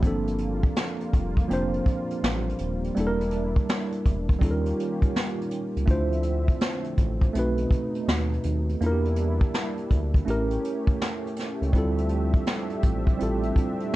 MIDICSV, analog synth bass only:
0, 0, Header, 1, 2, 480
1, 0, Start_track
1, 0, Key_signature, -1, "minor"
1, 0, Tempo, 731707
1, 18, Time_signature, 4, 2, 24, 8
1, 9156, End_track
2, 0, Start_track
2, 0, Title_t, "Analog synth bass"
2, 0, Program_c, 0, 38
2, 21, Note_on_c, 0, 31, 91
2, 428, Note_off_c, 0, 31, 0
2, 746, Note_on_c, 0, 29, 86
2, 946, Note_off_c, 0, 29, 0
2, 987, Note_on_c, 0, 29, 91
2, 1187, Note_off_c, 0, 29, 0
2, 1464, Note_on_c, 0, 33, 95
2, 1665, Note_off_c, 0, 33, 0
2, 1705, Note_on_c, 0, 27, 82
2, 1906, Note_off_c, 0, 27, 0
2, 1945, Note_on_c, 0, 28, 101
2, 2350, Note_off_c, 0, 28, 0
2, 2662, Note_on_c, 0, 28, 92
2, 2864, Note_off_c, 0, 28, 0
2, 2898, Note_on_c, 0, 39, 91
2, 3102, Note_off_c, 0, 39, 0
2, 3784, Note_on_c, 0, 37, 84
2, 3851, Note_off_c, 0, 37, 0
2, 3858, Note_on_c, 0, 38, 108
2, 4266, Note_off_c, 0, 38, 0
2, 4582, Note_on_c, 0, 33, 91
2, 4784, Note_off_c, 0, 33, 0
2, 4822, Note_on_c, 0, 35, 99
2, 5024, Note_off_c, 0, 35, 0
2, 5299, Note_on_c, 0, 39, 91
2, 5502, Note_off_c, 0, 39, 0
2, 5541, Note_on_c, 0, 39, 98
2, 5743, Note_off_c, 0, 39, 0
2, 5778, Note_on_c, 0, 40, 103
2, 6185, Note_off_c, 0, 40, 0
2, 6504, Note_on_c, 0, 38, 92
2, 6705, Note_off_c, 0, 38, 0
2, 6738, Note_on_c, 0, 33, 106
2, 6942, Note_off_c, 0, 33, 0
2, 7621, Note_on_c, 0, 37, 84
2, 7689, Note_off_c, 0, 37, 0
2, 7700, Note_on_c, 0, 38, 102
2, 8107, Note_off_c, 0, 38, 0
2, 8422, Note_on_c, 0, 33, 82
2, 8624, Note_off_c, 0, 33, 0
2, 8668, Note_on_c, 0, 33, 92
2, 8867, Note_off_c, 0, 33, 0
2, 9156, End_track
0, 0, End_of_file